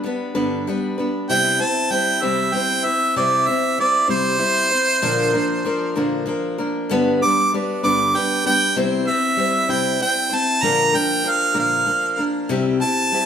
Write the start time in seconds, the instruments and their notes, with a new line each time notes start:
0.04 steel-string acoustic guitar G3 B3 D4 B4
0.35 steel-string acoustic guitar G2 D3 G3 B3 D4 B4
0.67 steel-string acoustic guitar G3 B3 D4 B4
0.98 steel-string acoustic guitar G3 B3 D4 B4
1.29 steel-string acoustic guitar C3 G3 C4 E4 C5, harmonica G5
1.59 steel-string acoustic guitar C4 E4 C5, harmonica A5
1.90 steel-string acoustic guitar G3 C4 E4 C5, harmonica G5
2.22 steel-string acoustic guitar C3 G3 C4 E4 C5, harmonica E5
2.53 steel-string acoustic guitar G3 C4 E4 C5, harmonica G5
2.84 steel-string acoustic guitar C4 E4 C5, harmonica E5
3.16 steel-string acoustic guitar C3 G3 C4 E4 C5, harmonica D5
3.46 steel-string acoustic guitar C4 E4 C5, harmonica E5
3.78 steel-string acoustic guitar G3 C4 E4 C5, harmonica D5
4.08 steel-string acoustic guitar C3 G3 C4 E4 C5, harmonica C5
4.38 steel-string acoustic guitar G3 C4 E4 C5
4.70 steel-string acoustic guitar C4 E4 C5
5.02 steel-string acoustic guitar A#2 D3 F3 A#3 D4 A#4
5.33 steel-string acoustic guitar F3 A#3 D4 A#4
5.64 steel-string acoustic guitar F3 A#3 D4 A#4
5.96 steel-string acoustic guitar A#2 D3 F3 A#3 D4 A#4
6.26 steel-string acoustic guitar F3 A#3 D4 A#4
6.58 steel-string acoustic guitar F3 A#3 D4 A#4
6.89 steel-string acoustic guitar G2 D3 G3 B3 D4 B4
7.22 steel-string acoustic guitar G3 B3 D4 B4, harmonica D6
7.53 steel-string acoustic guitar G3 B3 D4 B4
7.83 steel-string acoustic guitar G2 D3 G3 B3 D4 B4, harmonica D6
8.14 steel-string acoustic guitar G3 B3 D4 B4, harmonica G5
8.45 steel-string acoustic guitar G3 B3 D4 B4, harmonica G5
8.76 steel-string acoustic guitar C3 G3 C4 E4 C5
9.05 steel-string acoustic guitar C4 E4 C5, harmonica E5
9.37 steel-string acoustic guitar G3 C4 E4 C5
9.68 steel-string acoustic guitar C3 G3 C4 E4 C5, harmonica G5
9.98 steel-string acoustic guitar G3 C4 E4 C5, harmonica G5
10.30 steel-string acoustic guitar C4 E4 C5
10.34 harmonica A5
10.62 steel-string acoustic guitar A#2 D3 F3 A#3 D4 A#4, harmonica A#5
10.93 steel-string acoustic guitar F3 A#3 D4 A#4, harmonica G5
11.24 steel-string acoustic guitar F3 A#3 D4 A#4
11.29 harmonica F5
11.54 steel-string acoustic guitar A#2 D3 F3 A#3 D4 A#4
11.60 harmonica F5
11.85 steel-string acoustic guitar F3 A#3 D4 A#4
12.17 steel-string acoustic guitar F3 A#3 D4 A#4
12.49 steel-string acoustic guitar C3 G3 C4 E4 G4
12.80 steel-string acoustic guitar C4 E4 G4, harmonica A5
13.12 steel-string acoustic guitar G3 C4 E4 G4